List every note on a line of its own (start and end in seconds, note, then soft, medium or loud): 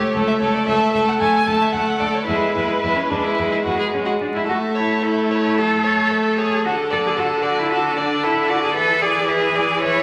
0.00 0.14 A3 soft
0.00 0.14 G4 soft
0.00 0.12 C#5 medium
0.14 0.23 C#2 medium
0.14 0.40 A3 soft
0.14 0.40 A4 medium
0.27 0.33 E5 medium
0.39 0.49 C#2 soft
0.39 0.66 A3 soft
0.39 0.66 A4 soft
0.39 0.56 C#5 medium
0.54 0.68 D5 medium
0.67 0.76 C#2 medium
0.67 0.93 A3 soft
0.67 0.92 A4 medium
0.67 0.93 E5 medium
0.92 1.02 C#2 soft
0.92 1.18 A3 soft
0.92 1.18 A4 soft
0.92 1.00 E5 medium
1.08 1.13 F#5 medium
1.18 1.28 D2 medium
1.18 1.45 A3 medium
1.18 1.44 A4 medium
1.18 1.49 G#5 medium
1.45 1.55 D2 soft
1.45 1.72 A3 soft
1.45 1.72 A4 soft
1.45 1.63 A5 medium
1.62 1.74 E5 medium
1.73 1.82 D2 soft
1.73 1.99 A3 soft
1.73 1.98 A4 soft
1.73 2.01 F#5 medium
1.99 2.08 D2 soft
1.99 2.26 A3 soft
1.99 2.26 A4 soft
1.99 2.16 D5 medium
2.15 2.26 C#5 medium
2.26 2.36 E2 soft
2.26 2.55 G#3 soft
2.26 2.54 E4 soft
2.26 3.89 B4 medium
2.54 2.64 E2 soft
2.54 2.82 G#3 soft
2.54 2.81 E4 soft
2.81 2.91 E2 soft
2.81 3.10 G#3 soft
2.81 2.98 E4 medium
2.96 3.11 C#4 soft
3.10 3.19 E2 soft
3.10 3.38 G#3 soft
3.10 3.25 D4 soft
3.23 3.51 E4 soft
3.39 3.47 E2 soft
3.39 3.65 G#3 soft
3.51 3.57 E4 soft
3.64 3.74 E2 soft
3.64 3.93 G#3 soft
3.64 3.78 F#4 soft
3.79 3.87 G#4 soft
3.93 4.19 G#3 soft
3.93 4.01 C#4 medium
4.06 4.14 F#4 soft
4.20 4.48 G#3 soft
4.20 4.26 D4 soft
4.34 4.46 E4 soft
4.34 4.41 E4 soft
4.46 6.67 A3 soft
4.46 4.57 F#4 medium
4.46 4.76 A4 soft
4.46 4.76 E5 soft
4.75 5.03 E4 medium
4.75 5.04 C#5 soft
4.75 5.04 A5 soft
5.03 5.60 E4 medium
5.03 5.32 A4 soft
5.03 5.32 E5 soft
5.30 5.57 C#5 soft
5.30 5.58 A5 soft
5.58 5.86 A4 soft
5.58 6.38 A4 medium
5.58 5.86 E5 soft
5.84 6.12 C#5 soft
5.84 6.13 A5 soft
6.11 6.39 A4 soft
6.11 6.40 E5 soft
6.38 6.65 G#4 medium
6.38 6.63 C#5 soft
6.38 6.65 A5 soft
6.64 8.77 D3 medium
6.64 6.74 F#4 medium
6.64 6.92 A4 soft
6.64 6.92 F#5 soft
6.90 6.98 A4 medium
6.90 7.18 D5 soft
6.90 7.19 A5 soft
7.06 7.11 G#4 medium
7.17 7.26 F#4 medium
7.17 7.44 A4 soft
7.17 7.46 F#5 soft
7.42 7.60 F#4 medium
7.42 7.70 D5 soft
7.42 7.70 A5 soft
7.58 7.72 E4 medium
7.71 7.96 F#4 medium
7.71 7.98 A4 soft
7.71 7.99 F#5 soft
7.97 8.25 D4 medium
7.97 8.25 D5 soft
7.97 8.25 A5 soft
8.23 8.51 E4 medium
8.23 8.51 A4 soft
8.23 8.51 F#5 soft
8.49 8.62 F#4 medium
8.49 8.75 D5 soft
8.49 8.75 A5 soft
8.63 8.74 G#4 medium
8.75 10.03 E3 medium
8.75 9.03 A4 medium
8.75 9.03 B4 soft
8.75 9.04 E5 soft
9.02 9.27 G#4 medium
9.02 9.30 D5 soft
9.02 9.30 G#5 soft
9.28 9.82 G#4 medium
9.28 9.57 B4 soft
9.28 9.57 E5 soft
9.55 9.82 D5 soft
9.55 9.82 G#5 soft
9.82 10.03 B4 medium
9.82 10.03 C#5 medium
9.82 10.03 E5 soft